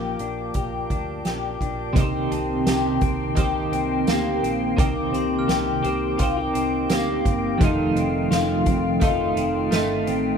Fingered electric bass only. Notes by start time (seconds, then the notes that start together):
Already playing: A#1
0.20 A#1
0.55 A#1
0.90 D2
1.25 A#1
1.61 A#1
1.96 C2
2.31 C2
2.66 C2
3.02 C2
3.37 C2
3.72 C2
4.07 D2
4.43 A#1
4.78 C2
5.13 C2
5.49 C2
5.84 C2
6.20 C2
6.55 C2
6.90 D2
7.26 G1
7.61 F1
7.95 F1
8.31 F1
8.67 F1
9.02 F1
9.36 F1
9.72 G1
10.07 A1